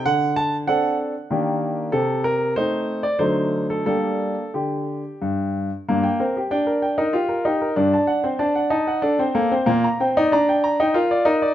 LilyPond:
\new Staff \with { instrumentName = "Grand piano" } { \time 3/4 \key g \minor \tempo 4 = 95 << { d4 <c' d' a'>4 <ees bes d' g'>4 | c4 <a c' ees'>4 <d fis a ees'>4 | <g bes d'>4 d4 g,4 | g,16 g''16 bes'16 g'16 g''16 bes'16 g''16 bes'16 g'16 bes'16 g'16 bes'16 |
g,16 a''16 fis''16 c''16 a''16 fis''16 a''16 fis''16 a'16 c''16 a'16 c''16 | bes,16 bes''16 g''16 d''16 bes''16 g''16 bes''16 g''16 bes'16 d''16 bes'16 d''16 | } \\ { fis''8 a''8 fis''8 r4. | a'8 bes'8 c''8. d''16 c''8. a'16 | a'4 g'4. r8 | bes8 c'8 d'8. ees'16 f'8 ees'8 |
d'8. c'16 d'8 ees'8 d'16 c'16 bes16 c'16 | bes8 c'16 ees'16 d'8. ees'16 f'8 ees'8 | } >> }